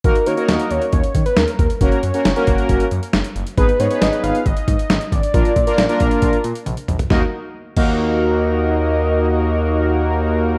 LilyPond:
<<
  \new Staff \with { instrumentName = "Analog synth lead" } { \time 4/4 \key ees \minor \tempo 4 = 136 bes'8 des''8 ees''8 des''4~ des''16 ces''16 bes'8 bes'8 | des''2. r4 | ces''8 des''8 ees''8 f''8 ees''4. d''8~ | d''2. r4 |
ees''16 r4 r16 ees''2~ ees''8~ | ees''1 | }
  \new Staff \with { instrumentName = "Analog polysynth" } { \time 4/4 \key ees \minor <bes ees' ges' bes'>16 r16 <bes ees' ges' bes'>16 <bes ees' ges' bes'>4 r2 r16 | <bes des' ges' bes'>8 r16 <bes des' ges' bes'>16 r16 <bes des' ges' bes'>4 r4. r16 | <ces' ees' aes' ces''>16 r16 <ces' ees' aes' ces''>16 <ces' ees' aes' ces''>4 r2 r16 | <bes d' f' bes'>8 r16 <bes d' f' bes'>16 r16 <bes d' f' bes'>4 r4. r16 |
<bes ees' ges' bes'>16 r4 r16 <bes ees' ges' bes'>2~ <bes ees' ges' bes'>8~ | <bes ees' ges' bes'>1 | }
  \new Staff \with { instrumentName = "Analog synth bass" } { \clef bass \time 4/4 \key ees \minor ees,16 r16 ees16 r16 ees,16 r16 ees,16 r16 ees,16 r16 ees16 r16 ees,16 r16 ees,16 r16 | ges,,16 r16 ges,16 r16 ges,,16 r16 ges,,16 r16 ges,,16 r16 ges,16 r16 ges,,16 r16 ges,,16 r16 | aes,,16 r16 aes,16 r16 aes,,16 r16 aes,,16 r16 aes,,16 r16 aes,16 r16 aes,,16 r16 aes,,16 r16 | bes,,16 r16 bes,16 r16 bes,,16 r16 bes,,16 r16 bes,,16 r16 bes,16 r16 bes,,16 r16 bes,,16 r16 |
ees,8 r4 ees,2~ ees,8~ | ees,1 | }
  \new DrumStaff \with { instrumentName = "Drums" } \drummode { \time 4/4 <hh bd>16 hh16 hh16 hh16 <hh sn>16 hh16 hh16 hh16 <hh bd>16 hh16 <hh bd>16 hh16 <hh sn>16 hh16 <hh bd>16 hh16 | <hh bd>16 hh16 hh16 hh16 <hh sn>16 hh16 <hh bd>16 hh16 <hh bd>16 hh16 hh16 hh16 <hh sn>16 hh16 hh16 hh16 | <hh bd>16 hh16 hh16 hh16 <hh sn>16 hh16 hh16 hh16 <hh bd>16 hh16 <hh bd>16 hh16 <hh sn>16 hh16 <hh bd>16 hh16 | <hh bd>16 hh16 <hh bd>16 hh16 <hh sn>16 hh16 <hh bd>16 hh16 <hh bd>16 hh16 hh16 hh16 <hh tommh>16 hh16 <hh toml>16 <hh tomfh>16 |
<bd sn>4 r8 <cymc bd>8 r4 r4 | r4 r4 r4 r4 | }
>>